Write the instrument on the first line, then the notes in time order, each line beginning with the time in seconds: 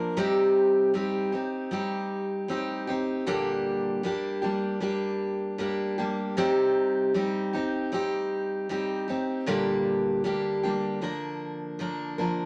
steel-string acoustic guitar
Already playing: F3 A#3 D4 A#4
0.17 C3 G3 C4 D#4 G4
0.94 G3 C4 D#4 G4
1.32 C4 D#4 G4
1.71 G3 C4 D#4 G4
2.48 G3 C4 D#4 G4
2.87 C4 D#4 G4
3.27 A#2 D3 G3 A#3 D4 G4
4.03 G3 A#3 D4 G4
4.42 G3 A#3 D4 G4
4.80 G3 A#3 D4 G4
5.58 G3 A#3 D4 G4
5.98 G3 A#3 D4 G4
6.37 C3 G3 C4 D#4 G4
7.14 G3 C4 D#4 G4
7.53 C4 D#4 G4
7.92 G3 C4 D#4 G4
8.69 G3 C4 D#4 G4
9.08 C4 D#4 G4
9.46 A#2 D3 G3 A#3 D4 G4
10.24 G3 A#3 D4 G4
10.63 G3 A#3 D4 G4
11.01 F3 A#3 D4 A#4
11.79 F3 A#3 D4 A#4
12.18 F3 A#3 D4 A#4